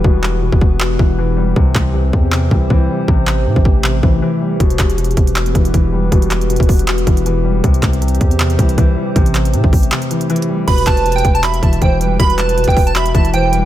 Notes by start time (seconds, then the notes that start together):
Already playing: B2 E3 G3 B3 G4 B4
0.04 E1 B2, kick
0.23 clap
0.42 B2
0.52 E1, kick
0.61 kick
0.80 B2, clap
0.99 E1 E3, kick
1.18 E3
1.37 G3
1.56 C2 C3 C4 C5, kick
1.75 C2, kick, clap
1.94 C3
2.13 E2, kick
2.32 C3, clap
2.51 C2 E3, kick
2.70 C2 E3, kick
2.89 G3
3.08 A1 C3 A3, kick
3.27 clap
3.46 A2 C3
3.56 A1, kick
3.65 kick
3.84 C3, clap
4.03 A1 E3, kick
4.22 E3
4.41 G3
4.60 E1 B2 B3 B4, kick, closed hi-hat
4.70 closed hi-hat
4.79 E1, kick, clap, closed hi-hat
4.90 closed hi-hat
4.98 B2, closed hi-hat
5.04 closed hi-hat
5.11 closed hi-hat
5.17 E1, kick, closed hi-hat
5.27 closed hi-hat
5.36 B2, clap, closed hi-hat
5.46 closed hi-hat
5.55 E1 E3, kick, closed hi-hat
5.65 closed hi-hat
5.74 E1 E3, kick, closed hi-hat
5.92 G3
6.12 E1 B2, kick, closed hi-hat
6.22 closed hi-hat
6.31 clap, closed hi-hat
6.41 closed hi-hat
6.50 B2, closed hi-hat
6.56 E1, kick, closed hi-hat
6.63 closed hi-hat
6.69 kick, open hi-hat
6.79 closed hi-hat
6.88 B2, clap, closed hi-hat
6.98 closed hi-hat
7.07 E1 E3, kick, closed hi-hat
7.17 closed hi-hat
7.26 E3, closed hi-hat
7.44 G3
7.64 C2 C3 E3 C4 G4 C5, kick, closed hi-hat
7.74 closed hi-hat
7.83 C2, kick, clap, closed hi-hat
7.93 closed hi-hat
8.02 C3, closed hi-hat
8.08 closed hi-hat
8.15 closed hi-hat
8.21 E2, kick, closed hi-hat
8.31 closed hi-hat
8.39 C3, clap, closed hi-hat
8.50 closed hi-hat
8.59 C2 E3, kick, closed hi-hat
8.69 closed hi-hat
8.78 C2 E3, kick, closed hi-hat
8.97 G3
9.16 A1 C3 A3 G4, kick, closed hi-hat
9.26 closed hi-hat
9.35 clap, closed hi-hat
9.45 closed hi-hat
9.54 A2 C3, closed hi-hat
9.64 A1, kick
9.73 A1, kick, open hi-hat
9.83 closed hi-hat
9.91 C3, clap, closed hi-hat
10.02 closed hi-hat
10.11 E3, closed hi-hat
10.21 closed hi-hat
10.30 E3, closed hi-hat
10.36 closed hi-hat
10.42 closed hi-hat
10.49 G3
10.68 E1 B2 B4 B5, kick, closed hi-hat, crash
10.78 closed hi-hat
10.87 E1 A5, kick, clap, closed hi-hat
10.97 closed hi-hat
11.06 B2, closed hi-hat
11.12 G5, closed hi-hat
11.18 closed hi-hat
11.25 E1, kick, closed hi-hat
11.35 A5, closed hi-hat
11.43 B2 E5 B5, clap, closed hi-hat
11.54 closed hi-hat
11.63 E1 E3 A5, kick, closed hi-hat
11.73 closed hi-hat
11.81 E1 E3 C5 G5, kick, closed hi-hat
12.00 G3 B4, closed hi-hat
12.19 E1 B2 A#4 B5, kick, closed hi-hat
12.30 B4, closed hi-hat
12.39 A5, clap, closed hi-hat
12.49 closed hi-hat
12.57 B2, closed hi-hat
12.64 E1, kick, closed hi-hat
12.68 G5, closed hi-hat
12.77 kick, open hi-hat
12.87 A5, closed hi-hat
12.95 B2 E5 B5, clap, closed hi-hat
13.06 closed hi-hat
13.15 E1 E3 A5, kick, closed hi-hat
13.25 closed hi-hat
13.34 E3 C5 G5, closed hi-hat
13.52 G3 B4, closed hi-hat